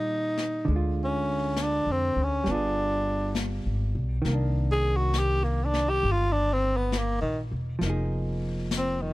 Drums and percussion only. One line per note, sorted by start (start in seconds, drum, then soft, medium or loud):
0.37 snare soft
0.68 brush sweep soft
1.57 snare soft
1.57 hi-hat pedal soft
2.46 brush sweep soft
2.46 snare soft
3.35 snare soft
3.35 hi-hat pedal soft
4.25 brush sweep soft
4.25 snare soft
5.14 snare soft
5.14 hi-hat pedal medium
5.74 snare soft
6.03 brush sweep soft
6.92 snare soft
6.92 hi-hat pedal soft
7.81 brush sweep soft
7.81 snare soft
8.71 snare soft
8.71 hi-hat pedal medium